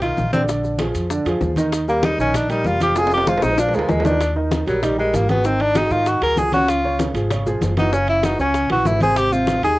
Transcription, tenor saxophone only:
0.02 0.31 F4 medium
0.33 0.42 C4 medium
1.89 2.06 A#3 loud
2.05 2.20 D#4 loud
2.21 2.38 C#4 medium
2.36 2.51 D4 medium
2.51 2.68 D#4 medium
2.67 2.82 F4 medium
2.83 3.00 G4 medium
2.98 3.13 G#4 loud
3.14 3.30 G4 loud
3.29 3.45 F4 medium
3.43 3.61 D#4 medium
3.59 3.77 D4 medium
3.75 3.92 F3 medium
3.90 4.07 G#3 medium
4.05 4.36 D4 medium
4.68 4.85 F#3 medium
4.84 4.99 G3 medium
4.99 5.17 G#3 medium
5.15 5.30 A#3 medium
5.31 5.48 B3 medium
5.46 5.63 C4 medium
5.62 5.79 D4 loud
5.77 5.94 D#4 medium
5.92 6.10 F4 medium
6.08 6.22 F#4 medium
6.23 6.40 A#4 loud
6.39 6.53 G#4 medium
6.54 6.71 F#4 loud
6.69 7.00 F4 medium
7.79 7.95 D#4 medium
7.93 8.08 C#4 medium
8.09 8.27 E4 loud
8.25 8.40 D#4 medium
8.40 8.69 C#4 medium
8.72 8.89 F#4 medium
8.87 9.02 E4 medium
9.03 9.19 G#4 loud
9.17 9.34 G4 medium
9.33 9.63 F4 medium
9.64 9.79 G#4 loud

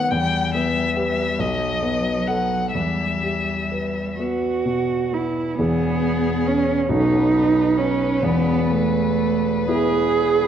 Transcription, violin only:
0.00 0.13 F#5 medium
0.11 0.54 G5 medium
0.55 1.41 E5 medium
1.40 2.29 D#5 medium
2.27 2.73 F#5 medium
2.74 4.16 E5 medium
5.58 6.91 G#4 medium
6.89 10.47 B4 medium

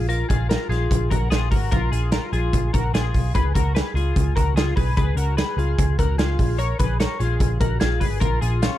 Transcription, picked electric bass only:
0.00 0.23 A#1 medium
0.30 0.55 A#1 medium
0.69 0.86 A#1 medium
0.91 1.07 A#1 medium
1.11 1.28 A#1 loud
1.31 1.51 A#1 loud
1.51 1.68 G#1 medium
1.72 1.89 A#1 loud
1.92 2.17 A#1 medium
2.33 2.50 A#1 medium
2.53 2.70 A#1 medium
2.74 2.90 A#1 medium
2.94 3.11 A#1 medium
3.15 3.31 B1 medium
3.35 3.51 C#2 loud
3.55 3.80 C#2 medium
3.94 4.11 C#2 medium
4.16 4.33 C#2 medium
4.37 4.53 C#2 medium
4.54 4.72 C#2 medium
4.77 4.94 B1 medium
4.97 5.14 C#2 medium
5.16 5.41 C#2 medium
5.57 5.74 C#2 medium
5.78 5.95 C#2 medium
5.99 6.16 C#2 loud
6.18 6.35 C#2 medium
6.39 6.73 A#1 medium
6.79 7.05 A#1 medium
7.20 7.37 A#1 medium
7.40 7.57 A#1 loud
7.60 7.77 A#1 loud
7.82 8.01 A#1 medium
8.01 8.18 G#1 medium
8.21 8.38 A#1 medium
8.42 8.67 A#1 medium

